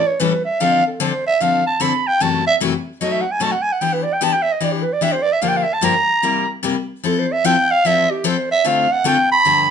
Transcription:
0.07 0.22 C#5 medium
0.20 0.31 A2 medium
0.20 0.31 E3 medium
0.20 0.32 G3 medium
0.20 0.32 C#4 medium
0.20 0.32 E4 medium
0.20 0.32 A4 medium
0.20 0.45 B4 medium
0.45 0.62 E5 medium
0.60 0.81 D3 medium
0.60 0.82 F3 medium
0.60 0.82 C4 medium
0.60 0.82 D4 medium
0.60 0.82 A4 medium
0.60 0.86 F5 loud
0.87 1.03 A4 medium
1.00 1.11 D3 medium
1.00 1.11 F3 medium
1.00 1.12 C4 medium
1.00 1.12 D4 medium
1.00 1.12 A4 loud
1.00 1.26 C5 medium
1.27 1.43 E5 loud
1.41 1.62 D3 medium
1.41 1.62 F3 medium
1.41 1.62 C4 medium
1.41 1.62 D4 medium
1.41 1.63 A4 medium
1.41 1.66 F5 medium
1.67 1.83 A5 medium
1.80 1.92 D3 medium
1.80 1.92 F3 medium
1.80 1.92 C4 medium
1.80 1.92 D4 medium
1.80 1.92 A4 medium
1.80 2.09 B5 medium
2.07 2.23 G5 loud
2.20 2.42 F#2 medium
2.20 2.42 C3 medium
2.20 2.42 E3 medium
2.20 2.42 A3 medium
2.20 2.42 E4 medium
2.20 2.43 F#4 medium
2.20 2.47 A5 medium
2.47 2.56 E5 loud
2.60 2.72 F#2 medium
2.60 2.72 C3 medium
2.60 2.72 E3 medium
2.60 2.72 A3 medium
2.60 2.72 E4 medium
2.60 2.73 F#4 loud
3.01 3.22 B2 medium
3.01 3.22 F#3 medium
3.01 3.23 A3 medium
3.01 3.23 D#4 medium
3.01 3.23 F#4 medium
3.01 3.14 D#5 medium
3.12 3.23 E5 medium
3.21 3.33 F#5 medium
3.32 3.44 G#5 medium
3.40 3.52 B2 medium
3.40 3.52 F#3 medium
3.40 3.52 A3 medium
3.40 3.53 D#4 medium
3.40 3.53 F#4 medium
3.40 3.54 A5 medium
3.52 3.64 F#5 medium
3.62 3.74 G#5 loud
3.72 3.83 F#5 medium
3.81 4.03 E3 medium
3.81 4.03 B3 medium
3.81 4.03 D4 medium
3.81 4.03 G4 medium
3.81 3.95 G5 medium
3.93 4.05 B4 medium
4.03 4.15 D5 loud
4.13 4.25 G5 medium
4.21 4.33 E3 medium
4.21 4.33 B3 medium
4.21 4.33 D4 medium
4.21 4.33 G4 loud
4.21 4.34 A5 medium
4.33 4.44 G5 medium
4.43 4.54 E5 loud
4.53 4.65 D#5 medium
4.61 4.83 E3 medium
4.61 4.83 B3 medium
4.61 4.83 D4 medium
4.61 4.83 G4 medium
4.61 4.74 D5 medium
4.73 4.84 G4 medium
4.83 4.95 B4 medium
4.93 5.04 D5 medium
5.01 5.13 E3 medium
5.01 5.13 B3 medium
5.01 5.13 D4 medium
5.01 5.14 G4 medium
5.01 5.14 E5 medium
5.12 5.24 C5 medium
5.23 5.34 D5 loud
5.33 5.44 E5 medium
5.42 5.63 G2 medium
5.42 5.63 D3 medium
5.42 5.64 F3 medium
5.42 5.64 A#3 medium
5.42 5.64 D4 medium
5.42 5.64 G4 medium
5.42 5.50 F5 medium
5.49 5.58 G5 medium
5.57 5.64 F5 medium
5.63 5.75 E5 loud
5.74 5.86 A5 medium
5.81 5.93 G2 medium
5.81 5.94 D3 medium
5.81 5.94 F3 loud
5.81 5.94 A#3 medium
5.81 5.94 D4 medium
5.81 5.94 G4 medium
5.81 6.49 A#5 loud
6.23 6.44 C3 medium
6.23 6.44 G3 medium
6.23 6.44 A#3 medium
6.23 6.45 E4 medium
6.23 6.45 G4 medium
6.63 6.74 C3 medium
6.63 6.75 G3 medium
6.63 6.75 A#3 medium
6.63 6.75 E4 medium
6.63 6.75 G4 medium
7.04 7.25 F3 medium
7.04 7.25 C4 medium
7.04 7.25 E4 medium
7.04 7.25 A4 medium
7.04 7.21 A4 medium
7.19 7.34 C5 medium
7.32 7.47 E5 loud
7.44 7.55 F3 loud
7.44 7.55 C4 medium
7.44 7.56 E4 loud
7.44 7.56 A4 loud
7.44 7.73 G5 loud
7.71 7.88 F5 loud
7.85 8.06 F3 medium
7.85 8.06 C4 medium
7.85 8.06 E4 medium
7.85 8.06 A4 medium
7.85 8.12 E5 loud
8.11 8.28 G4 medium
8.24 8.35 F3 loud
8.24 8.36 C4 loud
8.24 8.36 E4 loud
8.24 8.36 A4 medium
8.24 8.50 C5 medium
8.51 8.69 E5 loud
8.64 8.86 D3 medium
8.64 8.86 A3 medium
8.64 8.86 C4 medium
8.64 8.86 F4 medium
8.64 8.86 A4 medium
8.64 8.93 F5 medium
8.92 9.09 F#5 loud
9.04 9.16 D3 medium
9.04 9.16 A3 loud
9.04 9.16 C4 medium
9.04 9.16 F4 medium
9.04 9.16 A4 medium
9.04 9.31 G5 loud
9.32 9.71 B5 loud
9.45 9.66 G2 medium
9.45 9.66 D3 medium
9.45 9.67 F3 medium
9.45 9.67 B3 medium
9.45 9.67 D4 medium
9.45 9.67 G4 medium

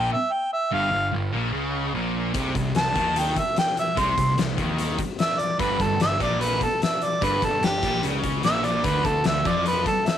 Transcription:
0.00 0.11 A#2 medium
0.00 0.12 G5 medium
0.13 0.34 E5 medium
0.33 0.52 G5 medium
0.53 0.74 E5 medium
0.71 0.92 G1 medium
0.71 0.90 G2 loud
0.71 1.12 F5 medium
0.91 1.12 G1 medium
0.91 1.08 G2 medium
1.12 1.32 G1 medium
1.12 1.29 G2 medium
1.33 1.52 A#1 medium
1.33 1.52 A#2 medium
1.52 1.92 C#2 medium
1.52 1.93 C#3 medium
1.94 2.32 A#1 medium
1.94 2.33 A#2 medium
2.34 2.54 C2 medium
2.34 2.54 C3 loud
2.34 kick loud
2.34 closed hi-hat medium
2.55 2.74 C2 medium
2.55 2.72 C3 medium
2.55 kick medium
2.55 closed hi-hat medium
2.75 2.95 C2 medium
2.75 2.92 C3 medium
2.75 3.20 A5 medium
2.75 snare loud
2.75 closed hi-hat medium
2.95 3.34 D#2 medium
2.95 3.36 D#3 medium
2.95 kick medium
2.95 closed hi-hat medium
3.16 3.40 G5 medium
3.16 closed hi-hat medium
3.36 3.57 E5 medium
3.36 kick medium
3.36 closed hi-hat medium
3.56 3.77 G5 medium
3.56 snare loud
3.56 closed hi-hat medium
3.77 4.01 E5 medium
3.77 closed hi-hat medium
3.96 4.16 C2 medium
3.96 4.15 C3 loud
3.96 4.38 C6 medium
3.96 kick loud
3.96 closed hi-hat medium
4.16 4.37 C2 medium
4.16 4.33 C3 medium
4.16 kick medium
4.16 closed hi-hat medium
4.37 4.57 C2 medium
4.37 4.54 C3 medium
4.37 snare loud
4.37 closed hi-hat medium
4.57 4.96 D#2 medium
4.57 4.98 D#3 loud
4.57 kick medium
4.57 closed hi-hat medium
4.79 closed hi-hat medium
4.99 kick medium
4.99 closed hi-hat medium
5.19 5.41 E5 medium
5.19 snare loud
5.19 closed hi-hat medium
5.39 5.60 D5 medium
5.39 closed hi-hat medium
5.59 5.79 G1 medium
5.59 5.78 G2 loud
5.59 5.84 B4 medium
5.59 kick loud
5.59 closed hi-hat medium
5.80 5.99 G1 medium
5.80 5.96 G2 medium
5.80 6.01 A4 medium
5.80 kick medium
5.80 closed hi-hat medium
6.00 6.19 G1 medium
6.00 6.17 G2 medium
6.00 6.21 E5 medium
6.00 snare loud
6.00 closed hi-hat medium
6.20 6.58 A#1 medium
6.20 6.60 A#2 medium
6.20 6.43 D5 medium
6.20 kick medium
6.20 closed hi-hat medium
6.41 6.61 B4 medium
6.41 closed hi-hat medium
6.61 6.82 A4 medium
6.61 kick medium
6.61 closed hi-hat medium
6.82 7.05 E5 medium
6.82 snare loud
6.82 closed hi-hat medium
7.02 7.26 D5 medium
7.02 closed hi-hat medium
7.21 7.41 G1 medium
7.21 7.42 G2 loud
7.21 7.46 B4 medium
7.21 kick loud
7.21 closed hi-hat medium
7.42 7.61 G1 medium
7.42 7.59 G2 medium
7.42 7.66 A4 medium
7.42 kick medium
7.42 closed hi-hat medium
7.62 7.82 G1 medium
7.62 7.79 G2 medium
7.62 8.03 G4 medium
7.62 snare loud
7.62 closed hi-hat medium
7.83 8.02 A#1 medium
7.83 8.03 A#2 medium
7.83 kick medium
7.83 closed hi-hat medium
8.03 8.42 C#2 medium
8.03 8.44 C#3 medium
8.03 closed hi-hat medium
8.24 kick medium
8.24 closed hi-hat medium
8.43 8.82 A#1 medium
8.43 8.84 A#2 medium
8.43 8.67 E5 medium
8.43 snare medium
8.43 closed hi-hat medium
8.64 8.87 D5 medium
8.64 closed hi-hat medium
8.84 9.04 D2 medium
8.84 9.04 D3 medium
8.84 9.07 B4 medium
8.84 kick loud
8.84 closed hi-hat medium
9.05 9.24 D2 medium
9.05 9.22 D3 medium
9.05 9.25 A4 medium
9.05 kick medium
9.05 closed hi-hat medium
9.24 9.44 D2 medium
9.24 9.42 D3 medium
9.24 9.49 E5 medium
9.24 snare loud
9.24 closed hi-hat medium
9.45 9.84 F2 medium
9.45 9.86 F3 loud
9.45 9.67 D5 medium
9.45 kick medium
9.45 closed hi-hat medium
9.66 9.86 B4 medium
9.66 closed hi-hat medium
9.86 10.09 A4 medium
9.86 kick medium
9.86 closed hi-hat medium
10.06 10.18 E5 medium
10.06 snare loud
10.06 closed hi-hat medium

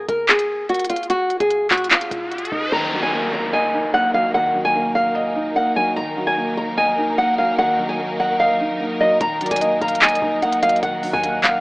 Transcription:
0.09 0.77 F#1 loud
0.09 0.25 A#4 medium
0.09 closed hi-hat medium
0.29 0.67 G#4 medium
0.29 clap loud
0.29 closed hi-hat soft
0.39 closed hi-hat medium
0.69 0.86 F#4 medium
0.69 closed hi-hat soft
0.74 closed hi-hat medium
0.79 closed hi-hat medium
0.85 closed hi-hat medium
0.90 1.06 F4 medium
0.90 closed hi-hat medium
0.96 closed hi-hat medium
1.03 closed hi-hat soft
1.10 1.38 F#4 loud
1.10 closed hi-hat medium
1.10 riser medium
1.30 closed hi-hat soft
1.30 open hi-hat medium
1.40 1.70 D#1 loud
1.40 1.69 G#4 medium
1.40 closed hi-hat medium
1.50 closed hi-hat medium
1.71 2.10 D#1 loud
1.71 1.88 F#4 medium
1.71 clap loud
1.71 closed hi-hat medium
1.77 closed hi-hat medium
1.84 closed hi-hat medium
1.91 2.48 F4 medium
1.91 clap loud
1.91 closed hi-hat medium
2.01 closed hi-hat medium
2.11 2.50 D#1 loud
2.11 closed hi-hat medium
2.32 closed hi-hat soft
2.38 closed hi-hat medium
2.45 closed hi-hat medium
2.52 2.71 D#1 loud
2.52 2.69 D#4 medium
2.72 3.73 D#3 loud
2.72 11.60 F#3 medium
2.72 5.93 A#3 medium
2.72 11.60 D#4 medium
2.72 11.60 A#4 medium
2.72 3.01 A#5 loud
2.72 downlifter medium
2.92 3.94 F#3 medium
3.02 3.31 G#5 medium
3.13 3.92 A#3 medium
3.33 3.50 A#5 medium
3.53 4.54 D#5 loud
3.53 3.91 G#5 medium
3.73 4.75 D#4 medium
3.94 4.74 A#3 medium
3.94 4.11 F#5 medium
4.14 4.53 F#3 medium
4.14 4.31 F5 medium
4.34 5.35 D#3 loud
4.34 4.63 F#5 loud
4.54 5.56 F#3 medium
4.65 4.93 G#5 medium
4.75 5.54 A#3 loud
4.95 5.52 F5 medium
5.15 5.96 D#5 loud
5.35 5.96 D#4 medium
5.56 5.96 A#3 medium
5.56 5.73 F#5 medium
5.76 5.96 F#3 medium
5.76 5.93 G#5 medium
5.96 6.98 D#3 medium
5.96 9.18 A#3 medium
5.96 6.25 A#5 loud
6.17 7.18 F#3 medium
6.27 6.55 G#5 medium
6.37 7.17 A#3 medium
6.57 6.74 A#5 medium
6.77 7.79 D#5 loud
6.77 7.16 G#5 medium
6.98 7.99 D#4 medium
7.18 7.98 A#3 medium
7.18 7.35 F#5 medium
7.38 7.77 F#3 medium
7.38 7.55 F5 medium
7.58 8.60 D#3 loud
7.58 7.87 F#5 loud
7.79 8.80 F#3 medium
7.89 8.17 G#5 medium
7.99 8.79 A#3 medium
8.20 8.36 F#5 medium
8.40 9.21 D#5 loud
8.40 8.97 F5 medium
8.60 9.21 D#4 medium
8.80 9.21 A#3 medium
9.00 9.21 F#3 medium
9.00 9.17 D#5 medium
9.21 9.50 D#1 loud
9.21 10.22 D#3 loud
9.21 11.60 A#3 medium
9.21 9.49 A#5 loud
9.21 closed hi-hat loud
9.41 10.42 F#3 medium
9.41 9.60 D5 medium
9.41 closed hi-hat medium
9.41 open hi-hat medium
9.46 closed hi-hat medium
9.51 9.73 D#1 loud
9.51 9.80 G#5 medium
9.51 closed hi-hat medium
9.56 closed hi-hat medium
9.61 10.41 A#3 medium
9.61 9.81 D#5 medium
9.61 closed hi-hat medium
9.71 9.81 D#2 loud
9.81 10.20 D#1 loud
9.81 10.01 F5 loud
9.81 9.98 A#5 medium
9.81 closed hi-hat soft
9.88 closed hi-hat medium
9.95 closed hi-hat medium
10.02 11.03 D#5 loud
10.02 10.21 D#5 medium
10.02 10.40 G#5 medium
10.02 clap loud
10.02 closed hi-hat soft
10.09 closed hi-hat medium
10.15 closed hi-hat medium
10.22 10.61 D#1 loud
10.22 11.23 D#4 medium
10.22 10.79 D#5 medium
10.42 11.23 A#3 medium
10.42 10.59 F#5 medium
10.42 closed hi-hat soft
10.52 closed hi-hat medium
10.62 11.01 F#3 medium
10.62 10.79 F5 medium
10.62 closed hi-hat medium
10.69 closed hi-hat medium
10.76 closed hi-hat soft
10.83 11.12 D#1 loud
10.83 11.60 D#3 loud
10.83 11.11 F#5 loud
10.83 11.60 F#5 loud
10.83 closed hi-hat medium
11.03 11.60 F#3 medium
11.03 open hi-hat medium
11.13 11.43 D#2 loud
11.13 11.42 G#5 medium
11.23 11.60 A#3 medium
11.23 closed hi-hat medium
11.44 11.60 D#1 loud
11.44 11.60 F5 medium
11.44 clap loud
11.44 closed hi-hat medium

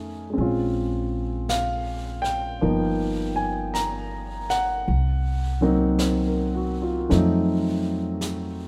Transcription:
0.00 0.33 F2 medium
0.00 0.33 A3 soft
0.00 0.35 C#4 soft
0.00 0.37 D#4 soft
0.00 0.39 G#4 soft
0.30 2.58 G#3 soft
0.30 2.60 C4 soft
0.37 2.58 A#1 medium
0.37 2.62 C#4 soft
0.37 brush sweep soft
0.41 2.64 F4 soft
1.49 2.26 F5 medium
1.49 brush sweep soft
1.49 snare soft
1.49 hi-hat pedal soft
2.22 3.31 G5 medium
2.22 snare soft
2.61 4.83 G1 medium
2.61 4.86 F3 soft
2.61 4.86 A#3 soft
2.61 4.87 B3 soft
2.61 4.87 D#4 soft
2.61 brush sweep soft
3.36 3.75 G#5 medium
3.74 4.45 A#5 medium
3.74 brush sweep soft
3.74 snare soft
3.74 hi-hat pedal soft
4.49 8.68 F#5 medium
4.49 snare soft
4.87 7.07 C2 medium
4.87 brush sweep soft
5.61 7.08 F#3 soft
5.61 7.11 A#3 soft
5.61 7.09 C4 soft
5.61 7.08 D#4 medium
5.99 6.51 C5 soft
5.99 brush sweep soft
5.99 snare soft
5.99 hi-hat pedal soft
6.27 6.74 A#4 soft
6.55 6.89 F#4 soft
6.82 7.21 F4 soft
7.09 8.68 F2 medium
7.09 8.68 F#3 soft
7.09 8.68 A3 soft
7.09 8.68 C4 soft
7.09 8.68 D#4 medium
7.09 brush sweep soft
7.09 snare soft
8.21 brush sweep soft
8.21 snare soft
8.21 hi-hat pedal soft

